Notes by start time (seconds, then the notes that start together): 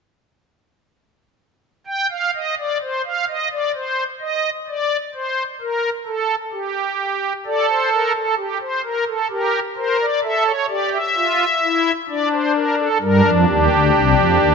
1.87 G5
2.10 F5
2.35 D#5
2.58 D5
2.82 C5
3.05 F5
3.28 D#5
3.52 D5
3.75 C5
4.21 D#5
4.68 D5
5.14 C5
5.61 A#4
6.06 A4
6.53 G4
7.46 A4 D5
7.69 C5
7.92 A#4
8.15 A4
8.37 G4
8.61 C5
8.84 A#4
9.07 A4
9.30 G4 A#4
9.77 A#4 C5
10.00 D5
10.23 A4 E5
10.46 C#5
10.69 G4 D5
10.92 E5
11.16 F4
11.62 E4
12.09 D4 D5
12.32 C5
12.55 A#4
12.78 A4
13.01 G2 G3 D4 A#4
13.24 F2 F3
13.48 D#2 D#3 G4
13.71 D2 D3
13.94 C2 C3
14.17 F2 F3
14.41 D#2 D#3